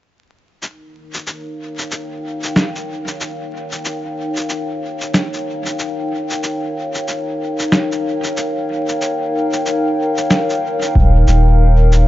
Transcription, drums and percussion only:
0.62 shaker soft
1.14 shaker soft
1.27 shaker soft
1.78 shaker soft
1.91 shaker soft
2.43 shaker soft
2.56 snare medium
2.56 shaker soft
2.75 shaker soft
3.07 shaker soft
3.20 shaker soft
3.72 shaker soft
3.85 shaker medium
4.36 shaker soft
4.49 shaker soft
5.01 shaker soft
5.14 snare medium
5.14 shaker medium
5.33 shaker soft
5.66 shaker soft
5.79 shaker soft
6.30 shaker soft
6.43 shaker soft
6.95 shaker soft
7.08 shaker soft
7.59 shaker soft
7.72 snare medium
7.72 shaker medium
7.92 shaker soft
8.24 shaker soft
8.37 shaker soft
8.88 shaker soft
9.01 shaker soft
9.53 shaker soft
9.66 shaker soft
10.17 shaker soft
10.31 snare medium
10.31 shaker soft
10.50 shaker soft
10.82 shaker soft
10.95 kick medium
11.28 shaker medium
11.92 shaker medium

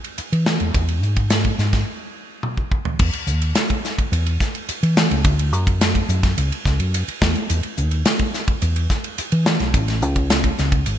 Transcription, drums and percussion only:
0.04 ride soft
0.18 hi-hat pedal medium
0.18 ride medium
0.33 ride medium
0.46 snare loud
0.46 hi-hat pedal medium
0.60 ride soft
0.74 kick medium
0.74 hi-hat pedal medium
0.74 ride medium
0.88 ride medium
1.03 hi-hat pedal medium
1.16 kick medium
1.16 ride medium
1.30 snare medium
1.30 hi-hat pedal medium
1.30 ride medium
1.44 kick medium
1.44 ride soft
1.59 snare soft
1.59 hi-hat pedal medium
1.73 kick medium
1.73 snare soft
1.73 ride medium
2.43 high tom soft
2.57 kick soft
2.72 kick medium
2.85 floor tom medium
2.99 kick loud
2.99 crash medium
3.13 ride medium
3.27 hi-hat pedal medium
3.42 ride medium
3.55 snare medium
3.55 hi-hat pedal medium
3.55 ride medium
3.70 kick medium
3.70 ride soft
3.85 snare soft
3.85 hi-hat pedal medium
3.98 kick medium
3.98 ride medium
4.13 hi-hat pedal medium
4.13 ride medium
4.26 ride soft
4.40 kick medium
4.40 snare soft
4.40 hi-hat pedal medium
4.55 ride soft
4.69 hi-hat pedal medium
4.69 ride medium
4.83 ride medium
4.97 snare loud
4.97 hi-hat pedal medium
5.11 ride medium
5.24 kick loud
5.24 hi-hat pedal medium
5.24 ride medium
5.39 ride medium
5.53 hi-hat pedal medium
5.67 kick medium
5.67 ride medium
5.81 snare medium
5.81 hi-hat pedal medium
5.81 ride medium
5.95 kick medium
5.95 ride medium
6.09 hi-hat pedal medium
6.23 kick medium
6.23 snare soft
6.23 ride medium
6.38 hi-hat pedal medium
6.38 ride medium
6.52 ride medium
6.65 kick medium
6.65 snare soft
6.65 hi-hat pedal medium
6.80 ride medium
6.94 hi-hat pedal medium
6.94 ride medium
7.08 ride medium
7.22 kick medium
7.22 snare loud
7.22 hi-hat pedal medium
7.35 ride soft
7.50 hi-hat pedal medium
7.50 ride medium
7.63 ride medium
7.77 hi-hat pedal medium
7.91 ride medium
8.05 snare medium
8.05 hi-hat pedal medium
8.05 ride medium
8.19 kick medium
8.19 ride soft
8.34 snare soft
8.34 hi-hat pedal medium
8.48 kick medium
8.48 ride medium
8.62 hi-hat pedal medium
8.62 ride medium
8.76 ride medium
8.90 kick medium
8.90 snare soft
8.90 hi-hat pedal medium
9.04 ride soft
9.18 hi-hat pedal medium
9.18 ride medium
9.32 ride medium
9.46 snare loud
9.46 hi-hat pedal medium
9.60 snare soft
9.60 ride soft
9.74 kick loud
9.74 hi-hat pedal medium
9.74 ride medium
9.88 snare soft
9.88 ride medium
10.02 hi-hat pedal medium
10.16 kick medium
10.16 ride medium
10.30 snare medium
10.30 hi-hat pedal medium
10.30 ride medium
10.44 kick medium
10.44 ride medium
10.58 snare soft
10.58 hi-hat pedal medium
10.72 kick medium
10.72 ride medium
10.86 hi-hat pedal medium
10.86 ride medium

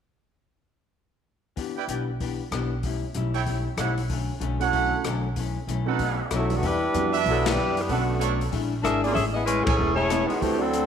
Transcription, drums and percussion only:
1.57 kick soft
1.57 open hi-hat soft
1.89 closed hi-hat soft
2.20 kick soft
2.20 open hi-hat soft
2.52 cross-stick soft
2.52 closed hi-hat soft
2.83 kick soft
2.83 open hi-hat soft
3.14 closed hi-hat soft
3.34 open hi-hat soft
3.46 kick soft
3.46 open hi-hat soft
3.77 cross-stick medium
3.77 closed hi-hat soft
3.98 open hi-hat soft
4.10 kick soft
4.10 open hi-hat soft
4.41 closed hi-hat soft
4.61 open hi-hat soft
4.73 kick soft
4.73 open hi-hat soft
5.04 cross-stick medium
5.04 closed hi-hat soft
5.36 kick soft
5.36 open hi-hat soft
5.69 closed hi-hat soft
5.99 kick soft
5.99 open hi-hat soft
6.31 cross-stick medium
6.31 closed hi-hat soft
6.50 open hi-hat soft
6.63 kick soft
6.63 open hi-hat soft
6.94 closed hi-hat soft
7.14 open hi-hat soft
7.26 kick soft
7.26 open hi-hat soft
7.46 snare medium
7.46 ride medium
7.77 open hi-hat soft
7.89 kick soft
7.89 open hi-hat soft
8.21 closed hi-hat medium
8.41 open hi-hat soft
8.53 kick soft
8.53 open hi-hat soft
8.85 cross-stick medium
8.85 closed hi-hat soft
9.04 open hi-hat soft
9.16 kick soft
9.16 open hi-hat soft
9.47 closed hi-hat medium
9.67 kick medium
9.67 ride medium
10.10 cross-stick medium
10.10 closed hi-hat medium
10.30 open hi-hat soft
10.42 kick soft
10.42 open hi-hat soft
10.73 closed hi-hat medium

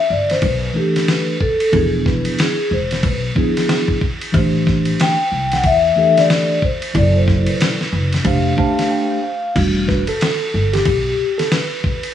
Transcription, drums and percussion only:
0.30 snare soft
0.30 ride soft
0.42 kick loud
0.42 ride medium
0.96 snare soft
0.96 ride medium
1.08 snare loud
1.08 hi-hat pedal medium
1.08 ride medium
1.40 kick medium
1.60 ride medium
1.73 kick loud
1.73 ride medium
2.06 kick medium
2.06 snare soft
2.25 ride medium
2.39 snare loud
2.39 hi-hat pedal medium
2.39 ride medium
2.91 snare soft
2.91 ride medium
3.03 kick medium
3.03 ride medium
3.36 kick medium
3.57 snare soft
3.57 ride medium
3.69 snare loud
3.69 hi-hat pedal medium
3.69 ride medium
3.88 kick medium
4.01 kick medium
4.21 ride medium
4.34 kick loud
4.34 ride medium
4.67 kick medium
4.67 snare soft
4.85 ride medium
5.00 snare loud
5.00 hi-hat pedal medium
5.00 ride medium
5.52 snare soft
5.52 ride medium
5.64 kick medium
5.64 ride medium
6.17 snare soft
6.17 ride medium
6.30 snare loud
6.30 hi-hat pedal medium
6.30 ride medium
6.62 kick medium
6.82 ride medium
6.95 kick loud
6.95 ride medium
7.28 kick medium
7.28 snare soft
7.47 ride medium
7.61 snare loud
7.61 hi-hat pedal medium
7.61 ride medium
7.81 snare soft
8.12 snare soft
8.12 ride medium
8.25 kick loud
8.25 ride medium
8.58 kick medium
8.79 snare soft
8.79 ride medium
9.56 kick loud
9.56 crash medium
9.56 ride medium
9.89 kick medium
9.89 snare soft
10.07 ride medium
10.21 snare loud
10.21 hi-hat pedal medium
10.21 ride medium
10.73 snare soft
10.73 ride medium
10.85 kick loud
10.85 ride medium
11.39 snare soft
11.39 ride medium
11.52 snare loud
11.52 hi-hat pedal medium
11.52 ride medium
11.84 kick medium
12.03 ride medium

